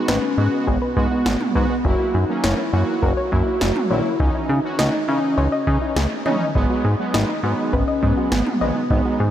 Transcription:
0.00 0.22 G#3 medium
0.00 0.23 B3 medium
0.00 0.22 F#4 medium
0.08 0.19 G#1 loud
0.08 0.69 C#4 medium
0.08 0.21 B4 medium
0.08 snare loud
0.23 0.36 B3 medium
0.38 0.48 G#2 loud
0.38 0.76 G#3 medium
0.38 0.76 B3 medium
0.38 0.51 D#4 medium
0.38 0.76 F#4 medium
0.67 0.78 G#1 loud
0.67 1.55 B3 loud
0.67 0.80 G#4 loud
0.67 kick medium
0.82 0.95 B4 medium
0.96 1.07 G#2 loud
0.96 1.35 G#3 medium
0.96 1.09 B3 medium
0.96 1.35 B3 medium
0.96 1.35 F#4 medium
0.96 kick medium
1.11 1.24 D#4 medium
1.26 1.37 G#1 loud
1.26 1.39 F#4 medium
1.26 snare loud
1.41 mid tom medium
1.55 1.66 G#2 loud
1.55 1.75 G#3 medium
1.55 1.75 B3 medium
1.55 1.87 B3 loud
1.55 1.75 F#4 medium
1.55 1.68 B4 medium
1.55 kick loud
1.70 1.83 B3 medium
1.85 1.95 F#1 loud
1.85 2.14 F#3 medium
1.85 2.14 A#3 medium
1.85 1.98 C#4 medium
1.85 2.14 E4 medium
1.85 2.16 F#4 loud
1.85 kick loud
2.00 2.12 E4 medium
2.14 2.25 F#2 loud
2.14 2.46 D#4 loud
2.14 2.27 F#4 medium
2.29 2.58 F#3 medium
2.29 2.58 A#3 medium
2.29 2.58 C#4 medium
2.44 2.54 F#1 loud
2.44 3.04 E4 loud
2.44 2.56 C#5 medium
2.44 snare loud
2.58 2.71 C#4 medium
2.73 2.84 F#2 medium
2.73 3.12 F#3 medium
2.73 3.12 A#3 medium
2.73 2.86 E4 medium
2.73 3.12 F#4 medium
3.02 3.13 F#1 loud
3.02 3.32 F#4 loud
3.02 3.15 A#4 loud
3.02 kick medium
3.17 3.30 C#5 medium
3.32 3.43 F#2 loud
3.32 3.70 F#3 medium
3.32 3.70 A#3 medium
3.32 3.45 C#4 medium
3.32 3.70 E4 medium
3.32 3.93 F#4 loud
3.32 kick medium
3.47 3.59 E4 medium
3.61 3.72 F#1 medium
3.61 3.74 F#4 medium
3.61 snare loud
3.76 mid tom medium
3.90 4.01 A#1 medium
3.90 4.10 F#3 medium
3.90 4.10 A#3 medium
3.90 4.10 E4 medium
3.90 4.22 E4 loud
3.90 4.03 C#5 medium
4.05 4.18 C#4 medium
4.20 4.31 C#2 loud
4.20 4.49 E3 medium
4.20 4.49 C#4 medium
4.20 4.49 D#4 medium
4.20 4.33 D#4 medium
4.20 4.78 D#4 loud
4.20 kick loud
4.35 4.48 E4 medium
4.49 4.60 C#3 loud
4.49 4.62 G#4 medium
4.64 4.93 E3 medium
4.64 4.93 C#4 medium
4.64 4.93 F#4 medium
4.79 4.90 C#2 loud
4.79 5.10 D#4 medium
4.79 4.92 D#5 medium
4.79 snare loud
4.93 5.06 D#4 medium
5.08 5.19 C#3 loud
5.08 5.47 E3 medium
5.08 5.47 C#4 medium
5.08 5.97 C#4 medium
5.08 5.47 D#4 medium
5.08 5.21 E4 medium
5.38 5.48 C#2 medium
5.38 5.50 C#5 loud
5.52 5.65 D#5 medium
5.67 5.78 C#3 loud
5.67 6.06 E3 medium
5.67 6.06 C#4 medium
5.67 6.06 D#4 medium
5.67 5.80 D#4 medium
5.67 kick medium
5.82 5.95 E4 medium
5.96 6.07 C#2 loud
5.96 6.09 G#4 medium
5.96 snare loud
6.26 6.37 C#3 loud
6.26 6.45 E3 medium
6.26 6.45 C#4 medium
6.26 6.45 D#4 loud
6.26 6.39 D#5 medium
6.26 mid tom loud
6.41 6.53 D#4 medium
6.55 6.66 G#1 loud
6.55 6.84 F#3 medium
6.55 6.84 G#3 medium
6.55 6.84 B3 loud
6.55 6.68 D#4 medium
6.55 kick loud
6.70 6.83 F#4 medium
6.85 6.95 G#2 loud
6.85 6.98 G#4 medium
6.99 7.28 F#3 medium
6.99 7.28 G#3 medium
6.99 7.28 B3 medium
7.14 7.25 G#1 loud
7.14 7.42 D#4 medium
7.14 7.27 D#5 medium
7.14 snare loud
7.29 7.42 D#4 medium
7.43 7.54 G#2 loud
7.43 7.82 F#3 medium
7.43 7.82 G#3 medium
7.43 7.82 B3 medium
7.43 7.75 D#4 medium
7.43 7.56 F#4 medium
7.73 7.84 G#1 loud
7.73 8.33 C#4 loud
7.73 7.86 B4 loud
7.73 kick medium
7.88 8.01 D#5 medium
8.02 8.13 G#2 loud
8.02 8.41 F#3 medium
8.02 8.41 G#3 medium
8.02 8.41 B3 medium
8.02 8.15 D#4 medium
8.02 kick medium
8.17 8.30 F#4 medium
8.32 8.43 G#1 loud
8.32 8.92 B3 medium
8.32 8.45 G#4 medium
8.32 snare loud
8.47 mid tom medium
8.61 8.72 A#1 medium
8.61 8.80 F#3 medium
8.61 8.80 G#3 medium
8.61 8.80 B3 medium
8.61 8.74 D#5 medium
8.76 8.89 D#4 medium
8.90 9.01 G#1 loud
8.90 9.20 F#3 medium
8.90 9.20 G#3 medium
8.90 9.20 B3 medium
8.90 9.04 D#4 medium
8.90 9.31 D#4 loud
8.90 kick loud
9.05 9.18 F#4 medium
9.20 9.31 G#2 medium
9.20 9.31 G#4 medium

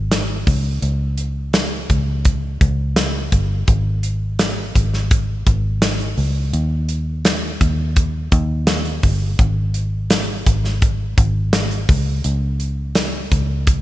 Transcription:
0.00 0.43 G#1 loud
0.11 snare loud
0.11 closed hi-hat medium
0.47 0.80 C#2 medium
0.47 kick medium
0.47 open hi-hat medium
0.82 1.86 C#2 medium
0.82 closed hi-hat medium
1.18 closed hi-hat medium
1.53 snare loud
1.53 closed hi-hat medium
1.90 2.57 C#2 medium
1.90 kick medium
1.90 closed hi-hat medium
2.25 kick medium
2.25 closed hi-hat medium
2.61 3.28 C#2 medium
2.61 kick medium
2.61 closed hi-hat medium
2.96 snare loud
2.96 closed hi-hat medium
3.32 3.66 G1 medium
3.32 kick medium
3.32 closed hi-hat medium
3.68 4.71 G#1 loud
3.68 kick medium
3.68 closed hi-hat medium
4.03 closed hi-hat medium
4.39 snare loud
4.39 closed hi-hat medium
4.75 5.43 G#1 medium
4.75 kick medium
4.75 closed hi-hat medium
4.94 snare soft
5.11 kick loud
5.11 closed hi-hat medium
5.46 6.14 G#1 loud
5.46 kick medium
5.46 closed hi-hat medium
5.82 snare loud
5.82 closed hi-hat medium
6.00 closed hi-hat soft
6.18 6.51 C#2 medium
6.18 open hi-hat medium
6.53 7.57 D#2 loud
6.53 closed hi-hat medium
6.89 closed hi-hat medium
7.25 snare loud
7.25 closed hi-hat medium
7.61 8.28 D#2 medium
7.61 kick medium
7.61 closed hi-hat medium
7.96 kick medium
7.96 closed hi-hat medium
8.32 8.99 D#2 medium
8.32 kick medium
8.32 closed hi-hat medium
8.67 snare loud
8.67 closed hi-hat medium
8.85 closed hi-hat soft
9.03 9.37 G1 medium
9.03 kick medium
9.03 open hi-hat medium
9.39 10.42 G#1 loud
9.39 kick medium
9.39 closed hi-hat medium
9.74 closed hi-hat medium
10.10 snare loud
10.10 closed hi-hat medium
10.46 11.14 G#1 medium
10.46 kick medium
10.46 closed hi-hat medium
10.64 snare soft
10.82 kick loud
10.82 closed hi-hat medium
11.18 11.85 G#1 loud
11.18 kick loud
11.18 closed hi-hat medium
11.53 snare loud
11.53 closed hi-hat medium
11.71 closed hi-hat soft
11.89 12.22 C#2 loud
11.89 kick loud
11.89 open hi-hat medium
12.24 13.28 C#2 loud
12.24 closed hi-hat medium
12.60 closed hi-hat medium
12.95 snare loud
12.95 closed hi-hat medium
13.31 13.81 C#2 medium
13.31 kick medium
13.31 closed hi-hat medium
13.67 kick medium
13.67 closed hi-hat medium

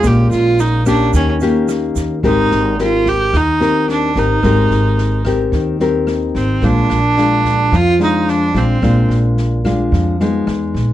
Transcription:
0.00 0.29 A#1 medium
0.00 1.10 A#2 medium
0.00 0.81 G#3 medium
0.00 0.81 C#4 medium
0.00 0.82 F4 medium
0.00 kick medium
0.00 cross-stick medium
0.00 snare soft
0.00 shaker medium
0.07 0.31 G4 medium
0.31 1.09 A#1 medium
0.31 0.62 F4 medium
0.31 snare soft
0.31 shaker soft
0.59 0.87 D#4 medium
0.59 snare soft
0.59 shaker medium
0.86 1.37 A#3 medium
0.86 1.37 C#4 medium
0.86 1.12 D4 medium
0.86 1.37 G4 medium
0.86 kick soft
0.86 cross-stick medium
0.86 snare soft
0.86 shaker medium
1.13 1.92 D#2 medium
1.13 2.21 D#3 medium
1.13 1.31 C#4 medium
1.13 kick medium
1.13 snare soft
1.13 shaker medium
1.40 2.19 A#3 medium
1.40 2.19 C#4 medium
1.40 2.20 G4 medium
1.40 snare soft
1.40 shaker soft
1.68 cross-stick medium
1.68 snare soft
1.68 shaker soft
1.95 2.21 D#2 medium
1.95 kick soft
1.95 snare soft
1.95 shaker medium
2.23 2.49 G#1 medium
2.23 3.30 G#3 soft
2.23 2.74 C4 soft
2.23 2.76 D#4 medium
2.23 2.74 G4 soft
2.23 2.74 A#4 medium
2.23 kick medium
2.23 snare soft
2.51 3.29 G#1 medium
2.51 cross-stick soft
2.51 snare soft
2.78 3.33 C4 soft
2.78 3.10 F4 medium
2.78 3.34 G4 soft
2.78 3.34 A#4 medium
2.78 snare soft
3.06 3.38 G4 loud
3.06 kick soft
3.06 snare soft
3.33 4.11 D#2 medium
3.33 4.40 D#3 soft
3.33 3.90 D#4 medium
3.33 kick soft
3.33 cross-stick medium
3.33 snare soft
3.61 4.11 C4 soft
3.61 4.11 G4 soft
3.61 4.11 A#4 medium
3.61 snare soft
3.88 4.20 D4 medium
3.88 snare soft
4.15 4.41 G#1 medium
4.15 4.39 C4 soft
4.15 5.27 D#4 medium
4.15 4.39 G4 soft
4.15 4.39 A#4 medium
4.15 kick soft
4.15 snare soft
4.43 4.68 G#1 medium
4.43 5.50 G#3 soft
4.43 5.21 C4 soft
4.43 5.21 G4 medium
4.43 5.21 A#4 medium
4.43 kick medium
4.43 cross-stick soft
4.43 snare soft
4.70 5.49 G#1 medium
4.70 snare soft
4.98 snare soft
5.25 5.76 C4 medium
5.25 5.76 G4 medium
5.25 5.76 A#4 medium
5.25 kick soft
5.25 cross-stick medium
5.25 snare soft
5.52 6.31 D#2 medium
5.52 6.60 D#3 soft
5.52 kick soft
5.52 snare soft
5.80 6.58 C4 medium
5.80 6.59 G4 medium
5.80 6.59 A#4 medium
5.80 snare soft
6.07 cross-stick soft
6.07 snare soft
6.35 6.60 G#1 medium
6.35 6.65 C4 medium
6.35 kick soft
6.35 snare soft
6.62 6.88 A#1 medium
6.62 7.69 A#2 soft
6.62 6.98 G#3 medium
6.62 6.98 D4 medium
6.62 7.77 D4 medium
6.62 6.98 F4 medium
6.62 kick medium
6.62 snare soft
6.90 7.68 A#1 medium
6.90 cross-stick medium
6.90 snare soft
7.17 7.72 G#3 soft
7.17 7.72 D4 soft
7.17 7.72 F4 medium
7.17 snare soft
7.44 kick soft
7.44 snare soft
7.72 8.51 F2 medium
7.72 8.79 F3 soft
7.72 8.01 F4 loud
7.72 kick soft
7.72 cross-stick soft
7.72 snare soft
7.99 8.50 G#3 soft
7.99 8.50 D4 soft
7.99 8.30 D#4 medium
7.99 8.50 F4 medium
7.99 snare soft
8.28 8.59 D4 medium
8.28 snare soft
8.54 8.80 A#1 medium
8.54 8.78 G#3 soft
8.54 9.11 C4 medium
8.54 8.78 D4 medium
8.54 8.78 F4 medium
8.54 kick soft
8.54 snare soft
8.82 9.08 A#1 medium
8.82 9.89 A#2 soft
8.82 9.60 G#3 soft
8.82 9.60 D4 soft
8.82 9.61 F4 medium
8.82 kick medium
8.82 cross-stick medium
8.82 snare soft
9.09 9.87 A#1 medium
9.09 snare soft
9.37 snare soft
9.64 10.15 G#3 soft
9.64 10.16 D4 medium
9.64 10.15 F4 medium
9.64 kick soft
9.64 cross-stick medium
9.64 snare soft
9.92 10.43 F2 medium
9.92 10.44 F3 soft
9.92 kick medium
9.92 snare soft
10.20 10.93 G#3 medium
10.20 10.93 B3 soft
10.20 10.93 D#4 medium
10.20 snare soft
10.47 10.72 E2 medium
10.47 cross-stick soft
10.47 snare soft
10.74 10.93 A#1 medium
10.74 kick soft
10.74 snare soft

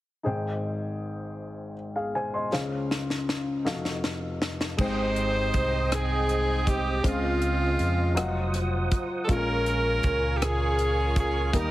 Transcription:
0.23 2.48 G#1 soft
0.23 2.48 G#2 soft
0.23 2.47 D#4 soft
0.23 1.73 G#4 soft
0.23 1.74 C5 soft
0.23 1.74 G5 soft
1.96 2.14 G#4 soft
1.96 2.14 F5 soft
2.15 2.33 C5 soft
2.15 2.33 G#5 medium
2.34 2.70 D#5 soft
2.34 2.69 C6 soft
2.52 3.61 C#2 medium
2.52 3.62 C#3 soft
2.52 3.65 C#4 soft
2.52 3.65 G#4 soft
2.52 3.66 C5 medium
2.52 3.65 F5 medium
2.52 snare soft
2.91 snare soft
3.10 snare soft
3.29 snare soft
3.64 4.74 F1 soft
3.64 4.74 F2 soft
3.64 4.77 D#4 soft
3.64 4.78 F#4 soft
3.64 4.78 A4 soft
3.64 4.79 F5 medium
3.64 snare medium
3.85 snare medium
4.04 snare medium
4.42 snare medium
4.61 snare medium
4.77 5.50 G#1 medium
4.77 5.88 G#2 soft
4.77 6.99 G#3 medium
4.77 8.13 C4 soft
4.77 7.00 D#4 soft
4.77 5.97 C5 medium
4.77 7.01 C5 medium
4.77 8.13 D#5 soft
4.77 7.02 G5 soft
4.77 7.01 G5 soft
4.77 7.02 D#6 medium
4.77 kick medium
4.77 crash medium
4.82 5.89 D#4 medium
4.82 5.89 G4 medium
4.82 5.89 C5 medium
5.16 closed hi-hat soft
5.53 7.00 C2 medium
5.53 kick medium
5.53 closed hi-hat soft
5.92 7.02 C4 medium
5.92 7.01 D#4 medium
5.92 6.67 G#4 medium
5.92 6.71 G#4 medium
5.92 cross-stick medium
5.92 closed hi-hat medium
6.29 closed hi-hat soft
6.66 7.04 G4 medium
6.66 7.05 G4 medium
6.66 kick medium
6.66 closed hi-hat soft
7.03 7.75 C#2 medium
7.03 8.12 C#3 medium
7.03 8.16 G#3 soft
7.03 8.52 G#3 medium
7.03 8.16 C4 soft
7.03 8.52 C4 soft
7.03 8.14 F4 soft
7.03 8.54 F4 medium
7.03 8.17 C5 medium
7.03 8.16 F5 soft
7.03 kick medium
7.03 closed hi-hat medium
7.08 8.52 F4 medium
7.41 closed hi-hat soft
7.79 8.14 F2 medium
7.79 closed hi-hat soft
8.15 8.87 F1 medium
8.15 9.28 F#3 medium
8.15 9.28 F4 medium
8.15 11.50 F4 soft
8.15 9.28 C5 soft
8.15 9.29 D#5 medium
8.15 9.29 F#5 medium
8.15 9.28 F#5 soft
8.15 9.28 D#6 medium
8.15 cross-stick medium
8.15 closed hi-hat medium
8.54 cross-stick soft
8.54 closed hi-hat soft
8.91 kick medium
8.91 closed hi-hat soft
9.24 11.49 G#3 soft
9.24 11.49 C#4 soft
9.24 9.34 A4 medium
9.29 10.00 A#1 medium
9.29 10.37 A#2 soft
9.29 10.38 C#4 medium
9.29 11.50 F4 soft
9.29 10.38 F4 medium
9.29 9.36 A4 soft
9.29 11.52 A#4 medium
9.29 10.39 A#4 medium
9.29 10.38 A#4 medium
9.29 11.52 G#5 soft
9.29 11.52 C#6 medium
9.29 kick medium
9.29 closed hi-hat medium
9.37 11.53 A#4 medium
9.66 cross-stick soft
9.66 closed hi-hat soft
10.03 11.50 C#2 medium
10.03 kick medium
10.03 closed hi-hat soft
10.37 10.45 G4 medium
10.42 11.51 C#4 medium
10.42 11.51 F4 medium
10.42 11.13 G#4 medium
10.42 11.18 G#4 medium
10.42 cross-stick medium
10.42 closed hi-hat medium
10.78 closed hi-hat soft
11.16 11.52 G#4 medium
11.16 11.59 G#4 medium
11.16 kick medium
11.16 closed hi-hat soft
11.53 11.71 D#2 medium
11.53 11.71 D#3 soft
11.53 11.71 G3 soft
11.53 11.71 A#3 soft
11.53 11.71 D#4 soft
11.53 11.71 D#4 medium
11.53 11.71 G4 medium
11.53 11.71 A#4 medium
11.53 11.71 D#5 soft
11.53 11.71 G5 soft
11.53 11.71 D#6 medium
11.53 kick medium
11.53 closed hi-hat medium
11.57 11.71 A#4 medium

